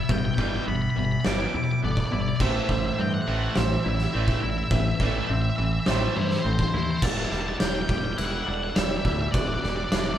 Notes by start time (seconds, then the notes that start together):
Already playing: E3 G3 B3 E4 B4
0.03 E5
0.09 G1 E2 G2 B2 E5 G5, kick
0.18 G5
0.25 G5
0.34 E2 B2 E3 G5, kick
0.39 G1 G3 D5 G5
0.49 G5
0.56 G5
0.67 G1 E2 B2 B3 E5 B5
0.76 B5
0.82 B5
0.90 B5
0.96 G1 E2 B2 E3 B5
1.05 B5
1.12 B5
1.21 B5, snare
1.25 G1 E2 B2 E3 G3 B4 D6
1.34 D6
1.40 D6
1.49 D6
1.53 E2 B2 E4 B4 D6
1.64 D6
1.71 D6
1.82 G1 E2 B2 B3 A4 D5
1.92 D5
1.97 D5, kick
2.07 D5
2.11 G1 E2 B2 E4 B4 D5
2.21 D5
2.29 D5
2.36 A2 D5, kick, crash
2.40 A1 A2 E3 A3 G4 C5 E5
2.49 E5
2.56 E5
2.63 E5
2.69 A1 A2 E3 G3 E5, kick
2.78 E5
2.86 E5
2.94 E5
2.98 G2 A2 E3 C4 E5 G5
3.14 F#5
3.22 F#5
3.26 A1 A2 E3 A3 F#5
3.36 F#5
3.44 F#5
3.51 F#5
3.55 A1 A2 E3 G3 C5 E5, snare
3.66 E5
3.73 E5
3.80 E4 E5
3.85 A1 A2 E3 D5
3.89 E5
3.96 E5, snare
4.04 E5
4.11 A1 A2 E3 A3 C4 D5 E5
4.19 E5
4.27 E5, kick
4.34 E5
4.41 A1 A2 E3 E4 E5
4.50 E5
4.58 E5
4.64 E5
4.71 A1 A2 E3 E5, kick
4.80 E5
4.88 E5
4.95 E5
5.00 A1 A2 E3 G3 A3 D5 E5, kick
5.11 E5
5.19 E5
5.26 A1 A2 E3 C4 E5
5.33 E5
5.42 E5
5.50 E5
5.56 A1 A2 E3 E5
5.65 E5
5.73 E5
5.80 E5
5.86 A1 A2 E3 G3 A3 C5 E5, snare
5.95 E5
6.04 E5
6.11 E5
6.16 G2 A2 E3 E4 C5 E5
6.24 C5 E5
6.30 C5 E5, snare
6.39 C5
6.44 A1 A2 E3 C4 A4 C5
6.53 C5
6.59 C5, kick
6.68 C5
6.73 D#2 A2 E3 E4 B4 C5
6.83 C5
6.91 C5
6.97 C5
7.02 E1 E2 G3 E4 B4 D5 A5, kick, crash
7.10 A5
7.17 A5
7.25 A5
7.31 E1 G3 A5, snare
7.41 A5
7.48 A5
7.60 E1 D4 D5 G5, snare, crash
7.68 G5
7.75 G5
7.82 G5
7.89 E1 G3 G5, kick
7.98 G5
8.05 G5
8.13 G5
8.18 E1 E4 B4 F#5, crash
8.25 F#5
8.32 F#5
8.40 F#5
8.46 E1 D4 D5 F#5
8.54 F#5
8.63 F#5
8.70 F#5
8.75 E1 G3 D5 E5, snare, crash
8.83 E5
8.90 E5
8.98 E5
9.05 D2 E3 E5, kick
9.12 E5
9.21 E5
9.28 D5 E5
9.33 E1 E2 F#4 E5, kick, crash
9.38 D5
9.48 D5
9.54 D5
9.61 E1 G3 D5, snare
9.69 D5
9.76 D5
9.84 D5
9.92 E1 D4 D5 E5, snare, crash
9.99 D5
10.07 D5
10.14 D5